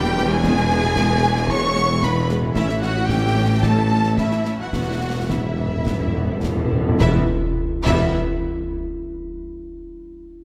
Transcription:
Already playing: E1 E2 E3 G3 E4 G4 B4 G5
0.04 E3 G3, snare
0.17 G3 B3, snare
0.25 E3
0.30 E3 G3 B3 G#4 G#5
0.34 E4
0.38 B4
0.43 E2 G#3 B3, concert bass drum, snare
0.57 E3 G#3, snare
0.69 G#3 B3, snare
0.84 E3 G#3
0.96 G#3 B3, concert bass drum, snare
1.09 E3 G#3
1.22 G#3 B3, snare
1.36 E3 G#3, snare
1.48 G#3 B3 C#5 C#6, concert bass drum
1.63 E3 G#3
1.76 G#3 B3, snare
1.90 E3 G#3
2.03 G#3 B3 B4 B5, concert bass drum, snare
2.16 E3 G#3
2.29 G#3 B3, snare
2.38 A2
2.42 E3 G#3 A3
2.46 E4
2.51 C#5 E5
2.55 A1 A2 A3 C#4 E4, concert bass drum, snare, crash
2.68 E3 E4, snare
2.81 A3 C#4 F#4 F#5, snare
2.96 E3 E4
3.09 A3 C#4 G4 G5, concert bass drum, snare
3.24 E3 E4
3.37 A3 C#4
3.50 E3 E4
3.62 A3 C#4 A4 A5, concert bass drum, snare
3.77 E3 E4
3.91 A3 C#4
4.04 E3 E4, snare
4.18 A3 C#4 E4 E5, concert bass drum, snare
4.31 E3 E4, snare
4.45 A3 C#4, snare
4.56 E2
4.60 E3 G3 E4 F#4 F#5
4.65 E4
4.69 E2 B4 F#5
4.73 E1 E2 E3 B3 F#4, concert bass drum, snare
4.82 E2
4.88 G3 E4
4.98 E2 E3 B3
5.06 E2
5.14 E2 G3 E4
5.22 E2
5.29 E2 E3 B3 E4 E5, concert bass drum, snare
5.37 E2
5.44 E2 G3 E4
5.53 E2
5.58 E2 F#2 E3 B3
5.68 E2 E4
5.72 G3
5.76 E2
5.84 E2 G2 E3 B3, concert bass drum, snare
5.92 E2
6.00 E2 G3 E4
6.07 E2
6.15 E2 E3 B3
6.24 E2
6.29 E2 G3 E4
6.40 E2 B2, concert bass drum, snare
6.44 E2 E3 B3
6.57 E2 G3 E4
6.65 E2
6.72 E2 E3 B3
6.80 E2
6.89 E2 G3 E4
6.97 E1 E2 E3 G3 E4 B4 E5, concert bass drum, snare
7.02 E1 E2 G3 B3 E5
7.81 E2 E3 E4 E5
7.86 E1 E2 G3 B3 E4, concert bass drum, snare, crash
7.91 B4 E5

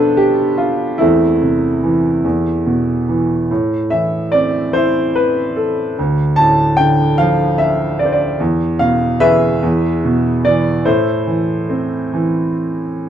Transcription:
Already playing: B2 F3 B3 D4 A4 B4 C5
0.17 G4
0.58 F4
0.98 E2 A3 C4 E4
1.42 C3
1.84 E3
2.24 E2
2.67 B2
3.09 E3
3.51 A2
3.90 E3 E5
4.32 C4 D5
4.73 E4 C5
5.16 B4
5.56 A4
5.99 D2
6.36 A2 A5
6.77 D3 G5
7.18 F3 F5
7.58 E5
7.99 D5
8.05 C5
8.12 D5
8.40 E2
8.79 B2 F5
9.20 E3 G#4 B4 E5
9.63 E2
10.04 B2
10.45 E3 D5
10.85 A2 E4 A4 C5
11.27 E3
11.70 C4
12.14 E3

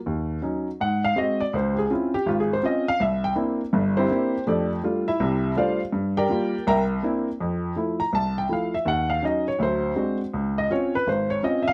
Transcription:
0.06 D#2
0.42 F#3 C#4 D#4
0.81 G#2 F#5
1.04 F5
1.16 G#3 C4 F#4 D#5
1.41 D5
1.53 C#2 C5
1.74 G4
1.78 G#4
1.90 C4 C#4 E4 F4
2.14 G4
2.26 G#1 F4
2.40 G#4
2.53 C5
2.63 C4 C#4 F4 D#5
2.88 F5
3.00 C2 E5
3.24 G5
3.35 A#3 C4 D4 E4
3.73 G1 G2
3.97 C4 E4 G4 C5
4.10 A#3 C4 D4 E4
4.47 F2 A3 D4 G4 A4 D5
4.84 G3 A3 D4 F4
5.08 E4 E5
5.20 C2 C3
5.56 G3 A3 D4 F4 C5 D5 F5
5.92 G2
6.17 G4 A#4 D5 G5
6.29 G3 A#3 F4
6.67 C2 A#4 E5 G5 A#5
7.03 A#3 C4 D4 E4
7.41 F2
7.76 F3 A3 E4
8.00 A#5
8.13 C2 A5
8.38 G5
8.49 F3 A3 E4 F5
8.74 E5
8.85 D#2 F#5
9.10 F5
9.22 F#3 C#4 D#4 D#5
9.48 C#5
9.59 D2 F#3
9.63 C5
9.96 G#3 C4 D4 F#4
10.34 C#2
10.58 D#5
10.70 C4 C#4 F4 C#5
10.95 B4
11.07 G#1 C5
11.30 C#5
11.43 C4 C#4 F4 D#5
11.63 E5
11.68 F5

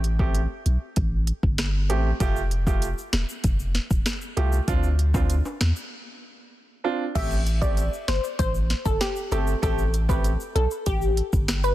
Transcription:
Already playing: A1
0.04 closed hi-hat
0.19 A3 C4 G4, kick
0.35 closed hi-hat
0.66 B1, closed hi-hat
0.96 A1, kick, closed hi-hat
1.27 closed hi-hat
1.43 G1, kick
1.58 cross-stick, snare, closed hi-hat
1.89 A1 A3 C4 G4, closed hi-hat
2.20 F1 A3 F4 G4, kick, closed hi-hat, shaker
2.36 shaker
2.51 closed hi-hat
2.67 A3 F4 G4, kick, shaker
2.82 closed hi-hat, shaker
2.98 shaker
3.13 E1, cross-stick, snare, closed hi-hat
3.29 shaker
3.44 F1, kick, closed hi-hat, shaker
3.60 shaker
3.75 snare, closed hi-hat
3.91 E1, kick, shaker
4.06 cross-stick, snare, closed hi-hat, shaker
4.21 shaker
4.37 C2 A3 F4 G4, closed hi-hat
4.52 shaker
4.68 D2 C4 D4 F4, kick, closed hi-hat, shaker
4.83 shaker
4.99 closed hi-hat
5.14 C4 D4 F4, kick, high timbale, shaker
5.30 closed hi-hat, shaker
5.45 high timbale, shaker
5.61 E2, cross-stick, snare, closed hi-hat
5.76 shaker
6.84 C4 D4 F4
7.15 A1 A3 C4 G4 E5, kick, closed hi-hat, crash, shaker
7.31 shaker
7.46 closed hi-hat, shaker
7.61 A3 C4 G4 D5, kick, shaker
7.77 closed hi-hat, shaker
7.93 shaker
8.08 G1 C5, cross-stick, snare, closed hi-hat
8.24 shaker
8.39 A1 C5, kick, closed hi-hat, shaker
8.55 shaker
8.70 snare, closed hi-hat
8.85 G1 A4, kick, shaker
9.01 G4, cross-stick, snare, closed hi-hat, shaker
9.16 shaker
9.32 G1 A3 C4 G4 A4, closed hi-hat, shaker
9.47 shaker
9.62 A1 A3 C4 G4 A4, kick, closed hi-hat, shaker
9.79 shaker
9.94 closed hi-hat, shaker
10.09 A3 C4 G4 B4, kick, shaker
10.24 closed hi-hat, shaker
10.40 shaker
10.55 B1 A4, closed hi-hat
10.71 shaker
10.86 A1 G4, kick, closed hi-hat, shaker
11.02 shaker
11.17 closed hi-hat
11.33 G1, kick, shaker
11.48 cross-stick, snare, closed hi-hat, shaker
11.64 B4, shaker

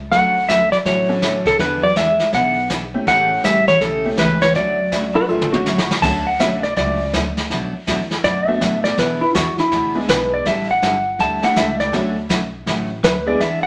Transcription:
0.11 D2 D3 F#3 A3 C#4 F#4 F#5, brush sweep, kick, snare
0.48 D3 F#3 A3 C#4 F#4 E5, kick, snare, hi-hat pedal
0.72 F#3 D5, snare
0.85 A1 D3 F#3 A3 C#4 F#4 C#5, brush sweep, kick, snare
1.09 C#4 D4 F#4 A4
1.22 D3 F#3 A3 C#4 F#4, kick, snare, hi-hat pedal
1.46 C#3 A4, kick, snare
1.59 E2 D3 E3 B3 D4 G#4 B4, brush sweep, kick, snare
1.83 F#3 D5
1.96 E3 G#3 B3 D4 G#4 E5, kick, snare, hi-hat pedal
2.19 snare
2.33 B1 E3 B3 D4 G#4 F#5, brush sweep, kick, snare
2.70 E3 B3 D4 G#4, kick, snare, hi-hat pedal
2.94 A3 C#4 E4 G4
3.07 A1 C#3 E3 A3 C#4 G4 F#5, brush sweep, kick, snare
3.44 A1 C#3 E3 G3 A3 C#4 G4 E5, kick, snare, hi-hat pedal
3.67 E3 C#5, snare
3.81 B1 C#3 E3 A3 C#4 G4 A4, brush sweep, kick, snare
4.05 A3 C#4 E4 G4
4.17 C#2 C#3 E3 A3 C#4 G4 B4, kick, snare, hi-hat pedal
4.41 E3 C#5, snare
4.55 D2 D3 F#3 A3 C#4 F#4 D5, brush sweep, kick, snare
4.92 D3 F#3 A3 C#4 F#4, kick, snare, hi-hat pedal
5.15 F#4 B4
5.28 A1 D3 F#3 A3 C#4 F4 F#4 A4
5.41 mid tom
5.52 A3 C#4 D4 F#4, mid tom
5.66 D3 F#3 A3 C#4 F#4, snare, hi-hat pedal
5.78 snare
5.91 snare
6.02 D2 D3 F#3 A3 C#4 D4 F#4 A4 A5, brush sweep, kick, snare, crash
6.27 F#5
6.39 B1 D3 F#3 A3 C#4 D4 F#4 A4 E5, kick, snare, hi-hat pedal
6.63 D5, snare
6.76 C#2 D3 F#3 A3 C#4 F#4 D5, brush sweep, kick, snare
7.13 D2 D3 F#3 A3 C#4 F#4, kick, snare, hi-hat pedal
7.37 snare
7.50 B1 B2 F#3 A3 D4 F#4, brush sweep, kick, snare
7.73 muted upright bass stroke
7.87 E2 B2 F#3 A3 D4 F#4, kick, snare, hi-hat pedal
8.11 snare
8.24 F#2 B2 F#3 A3 D4 F#4 D5, brush sweep, kick, snare
8.47 A3 B3 D4 F#4 A4 E5
8.61 A2 B2 F#3 A3 D4 F#4, kick, snare, hi-hat pedal
8.84 D5, snare
8.97 B2 E3 B3 D4 G#4 B4, brush sweep, kick, snare
9.21 E4
9.34 E2 B2 E3 B3 D4 F#4 G#4, kick, snare, hi-hat pedal
9.58 E4, snare
9.72 D2 B2 E3 B3 D4 G#4, brush sweep, kick, snare
9.95 G#3 B3 D4 E4 G#4
10.09 B1 B2 E3 B3 D4 G#4 B4, kick, snare, hi-hat pedal
10.34 D5
10.45 A1 D3 G3 D4 E4 A4 E5, brush sweep, kick, snare
10.71 F#5
10.82 G1 D3 G3 D4 E4 A4, kick, snare, hi-hat pedal
11.19 D2 D3 G3 D4 E4 A4 A5, brush sweep, kick, snare
11.42 A3 D4 E4 G4 A4 F#5, snare
11.56 C#2 D3 G3 D4 E4 A4 E5, kick, snare, hi-hat pedal
11.80 D5, snare
11.92 D2 D3 F#3 A3 C#4 D4 F#4 A4, brush sweep, kick, snare
12.29 B1 D3 F#3 A3 C#4 F#4, kick, snare, hi-hat pedal
12.66 A1 D3 F#3 A3 C#4 F#4, brush sweep, kick, snare
13.03 D2 D3 F#3 A3 C#4 F#4 B4, kick, snare, hi-hat pedal
13.26 G#3 B3 D4 E4 G#4 D5
13.40 E2 E3 B3 D4 G#4 E5, brush sweep, kick, snare
13.63 F#5

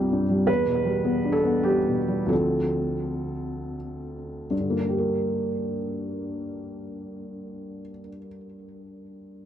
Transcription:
Already playing: C2 G2 G3 C4 F4 G4
0.12 G2
0.29 G3
0.47 E2 B4
0.66 B2
0.85 G3
1.04 B3
1.24 D4
1.32 A4
1.44 B3
1.63 G3 G4
1.87 B2
2.08 G3
2.26 D2 F3 C4 D4 A4
4.50 G2
4.60 D3
4.70 A#3
4.79 D4
4.89 G4
4.98 A#4

